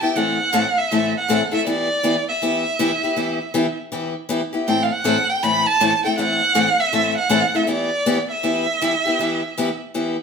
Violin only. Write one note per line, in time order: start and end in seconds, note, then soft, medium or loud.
0.03 0.18 G5 medium
0.17 0.80 F#5 medium
0.78 1.15 E5 medium
1.17 1.51 F#5 medium
1.54 1.66 E5 medium
1.68 2.24 D5 loud
2.29 3.74 E5 medium
4.68 4.84 G5 loud
4.83 4.93 F5 medium
4.92 5.31 F#5 loud
5.30 5.45 G5 loud
5.43 5.68 B5 loud
5.66 6.04 A5 loud
6.05 6.17 G5 medium
6.19 6.82 F#5 loud
6.80 7.17 E5 loud
7.17 7.57 F#5 medium
7.56 7.69 E5 medium
7.70 8.26 D5 loud
8.31 9.77 E5 medium